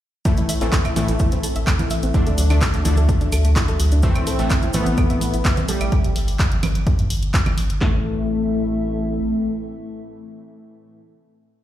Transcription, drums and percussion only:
0.25 kick loud
0.25 closed hi-hat medium
0.25 cabasa soft
0.37 closed hi-hat medium
0.37 cabasa soft
0.49 open hi-hat loud
0.49 cabasa medium
0.61 closed hi-hat medium
0.61 cabasa soft
0.73 kick loud
0.73 clap loud
0.73 closed hi-hat medium
0.73 cabasa medium
0.85 closed hi-hat medium
0.85 cabasa soft
0.85 claves medium
0.96 open hi-hat loud
0.96 low conga medium
0.96 cabasa medium
1.08 closed hi-hat medium
1.08 cabasa soft
1.19 kick loud
1.19 closed hi-hat medium
1.19 cabasa medium
1.32 closed hi-hat medium
1.32 cabasa soft
1.43 open hi-hat loud
1.43 cabasa loud
1.55 closed hi-hat medium
1.55 cabasa soft
1.67 kick loud
1.67 clap loud
1.67 closed hi-hat medium
1.67 cabasa medium
1.67 claves soft
1.79 closed hi-hat medium
1.79 low conga medium
1.79 cabasa soft
1.90 open hi-hat loud
1.90 cabasa medium
2.03 closed hi-hat medium
2.03 cabasa soft
2.14 kick loud
2.14 closed hi-hat medium
2.14 cabasa soft
2.26 closed hi-hat medium
2.26 cabasa soft
2.38 open hi-hat loud
2.38 cabasa loud
2.50 open hi-hat medium
2.50 cabasa soft
2.50 claves medium
2.61 kick loud
2.61 clap loud
2.61 closed hi-hat medium
2.61 cabasa medium
2.74 closed hi-hat medium
2.74 cabasa soft
2.85 open hi-hat loud
2.85 low conga medium
2.85 cabasa medium
2.97 closed hi-hat medium
2.97 cabasa soft
3.09 kick loud
3.09 closed hi-hat medium
3.09 cabasa medium
3.21 closed hi-hat medium
3.21 cabasa soft
3.32 open hi-hat loud
3.32 cabasa loud
3.32 claves medium
3.45 closed hi-hat medium
3.45 cabasa soft
3.56 kick loud
3.56 clap loud
3.56 closed hi-hat medium
3.56 cabasa medium
3.68 closed hi-hat medium
3.68 cabasa soft
3.80 open hi-hat loud
3.80 cabasa medium
3.92 closed hi-hat medium
3.92 cabasa soft
4.02 kick loud
4.02 closed hi-hat medium
4.02 cabasa medium
4.15 closed hi-hat medium
4.15 cabasa soft
4.15 claves medium
4.27 open hi-hat loud
4.27 cabasa medium
4.39 closed hi-hat medium
4.39 cabasa soft
4.50 kick loud
4.50 clap loud
4.50 closed hi-hat medium
4.50 cabasa medium
4.62 closed hi-hat medium
4.62 cabasa soft
4.73 open hi-hat loud
4.73 low conga medium
4.73 cabasa loud
4.86 closed hi-hat medium
4.86 cabasa soft
4.97 kick loud
4.97 closed hi-hat medium
4.97 cabasa medium
4.97 claves medium
5.10 closed hi-hat medium
5.10 cabasa soft
5.21 open hi-hat loud
5.21 cabasa loud
5.34 closed hi-hat medium
5.34 cabasa soft
5.44 kick loud
5.44 clap loud
5.44 closed hi-hat medium
5.44 cabasa medium
5.57 closed hi-hat medium
5.57 low conga medium
5.57 cabasa soft
5.68 open hi-hat loud
5.68 cabasa medium
5.81 closed hi-hat medium
5.81 cabasa soft
5.81 claves medium
5.92 kick loud
5.92 closed hi-hat medium
6.04 closed hi-hat medium
6.16 open hi-hat loud
6.28 open hi-hat medium
6.39 kick loud
6.39 clap loud
6.39 closed hi-hat medium
6.52 closed hi-hat medium
6.63 open hi-hat loud
6.63 low conga medium
6.63 claves medium
6.75 closed hi-hat medium
6.87 kick loud
6.87 closed hi-hat medium
6.99 closed hi-hat medium
7.10 open hi-hat loud
7.23 closed hi-hat medium
7.34 kick loud
7.34 clap loud
7.34 closed hi-hat medium
7.46 closed hi-hat medium
7.46 low conga medium
7.46 claves medium
7.58 open hi-hat loud
7.70 closed hi-hat medium
7.81 kick loud
7.81 snare loud
7.81 clap medium

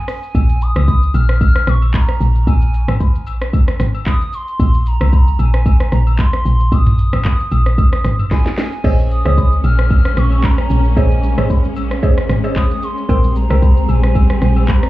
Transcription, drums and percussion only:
0.08 cross-stick loud
0.08 open hi-hat medium
0.08 shaker loud
0.23 shaker medium
0.35 kick loud
0.35 high agogo medium
0.35 shaker medium
0.49 shaker medium
0.61 shaker loud
0.76 cross-stick loud
0.76 high agogo medium
0.76 shaker soft
0.88 kick medium
0.88 low woodblock medium
0.88 shaker medium
1.03 shaker soft
1.14 high agogo medium
1.14 shaker medium
1.29 cross-stick loud
1.29 shaker soft
1.41 kick loud
1.41 high agogo medium
1.41 shaker medium
1.55 cross-stick loud
1.55 shaker medium
1.67 cross-stick loud
1.67 shaker medium
1.82 high agogo medium
1.82 shaker medium
1.94 kick loud
1.94 clap medium
1.94 low woodblock medium
1.94 shaker medium
2.09 cross-stick medium
2.09 shaker medium
2.21 shaker loud
2.35 shaker medium
2.47 kick loud
2.47 high agogo medium
2.47 shaker medium
2.62 shaker medium
2.74 shaker loud
2.88 cross-stick loud
2.88 high agogo medium
2.88 shaker soft
3.00 kick medium
3.00 low woodblock medium
3.00 shaker medium
3.15 shaker medium
3.27 high agogo medium
3.27 shaker medium
3.41 cross-stick loud
3.41 shaker soft
3.53 kick loud
3.53 high agogo medium
3.53 shaker medium
3.68 cross-stick loud
3.68 shaker medium
3.80 cross-stick loud
3.80 shaker medium
3.95 high agogo medium
3.95 shaker soft
4.06 kick loud
4.06 clap medium
4.06 low woodblock medium
4.06 shaker medium
4.21 shaker medium
4.33 shaker loud
4.48 shaker medium
4.60 kick loud
4.60 high agogo medium
4.60 shaker medium
4.74 shaker medium
4.86 shaker loud
5.01 cross-stick loud
5.01 high agogo medium
5.01 shaker soft
5.13 kick medium
5.13 low woodblock medium
5.13 shaker medium
5.27 shaker medium
5.39 high agogo medium
5.39 shaker medium
5.54 cross-stick loud
5.54 shaker soft
5.66 kick loud
5.66 high agogo medium
5.66 shaker medium
5.80 cross-stick loud
5.80 shaker medium
5.92 cross-stick medium
5.92 shaker medium
6.07 high agogo medium
6.07 shaker medium
6.19 kick loud
6.19 clap medium
6.19 low woodblock medium
6.19 shaker medium
6.33 cross-stick medium
6.33 shaker medium
6.45 shaker loud
6.60 shaker medium
6.72 kick loud
6.72 high agogo medium
6.72 shaker medium
6.86 mid tom loud
6.86 shaker medium
6.98 shaker medium
7.13 cross-stick medium
7.13 high agogo medium
7.13 shaker soft
7.25 kick loud
7.25 clap loud
7.25 low woodblock medium
7.25 shaker medium
7.40 shaker medium
7.51 high agogo medium
7.51 shaker medium
7.66 cross-stick medium
7.66 shaker soft
7.78 kick loud
7.78 high agogo medium
7.78 shaker medium
7.93 cross-stick loud
7.93 shaker medium
8.04 cross-stick loud
8.04 shaker medium
8.19 mid tom medium
8.19 high agogo medium
8.19 shaker medium
8.31 kick loud
8.31 snare medium
8.31 low woodblock medium
8.31 shaker medium
8.46 snare medium
8.46 shaker medium
8.58 snare loud
8.58 open hi-hat medium
8.58 shaker loud
8.72 shaker medium
8.84 kick loud
8.84 crash medium
8.84 high agogo medium
8.99 shaker medium
9.11 shaker medium
9.25 cross-stick medium
9.25 high agogo medium
9.25 shaker soft
9.37 kick medium
9.37 low woodblock medium
9.37 shaker medium
9.52 shaker soft
9.64 high agogo medium
9.64 shaker medium
9.79 cross-stick loud
9.79 shaker soft
9.91 kick loud
9.91 high agogo medium
9.91 shaker medium
10.05 cross-stick loud
10.05 shaker medium
10.17 cross-stick loud
10.17 shaker medium
10.32 high agogo medium
10.32 shaker medium
10.44 kick loud
10.44 clap medium
10.44 low woodblock medium
10.44 shaker medium
10.58 cross-stick medium
10.58 shaker medium
10.70 shaker loud
10.85 shaker medium
10.97 kick loud
10.97 high agogo medium
10.97 shaker medium
11.11 shaker medium
11.23 shaker loud
11.38 cross-stick medium
11.38 high agogo medium
11.38 shaker soft
11.50 kick medium
11.50 low woodblock medium
11.50 shaker medium
11.64 shaker soft
11.76 high agogo medium
11.76 shaker medium
11.91 cross-stick loud
11.91 shaker soft
12.03 kick loud
12.03 high agogo medium
12.03 shaker medium
12.18 cross-stick loud
12.18 shaker medium
12.29 cross-stick loud
12.29 shaker medium
12.44 high agogo medium
12.44 shaker medium
12.56 kick loud
12.56 clap medium
12.56 low woodblock medium
12.56 shaker medium
12.71 shaker medium
12.83 shaker loud
12.97 shaker medium
13.09 kick loud
13.09 high agogo medium
13.09 shaker medium
13.24 shaker medium
13.36 shaker medium
13.50 cross-stick medium
13.50 high agogo medium
13.50 shaker soft
13.62 kick medium
13.62 low woodblock medium
13.62 shaker medium
13.77 shaker medium
13.89 high agogo medium
13.89 shaker medium
14.03 cross-stick loud
14.03 shaker soft
14.15 kick loud
14.15 high agogo medium
14.15 shaker medium
14.30 cross-stick loud
14.30 shaker medium
14.42 cross-stick medium
14.42 shaker medium
14.56 high agogo medium
14.56 shaker medium
14.68 kick loud
14.68 clap loud
14.68 low woodblock medium
14.68 shaker medium
14.83 cross-stick medium
14.83 shaker medium

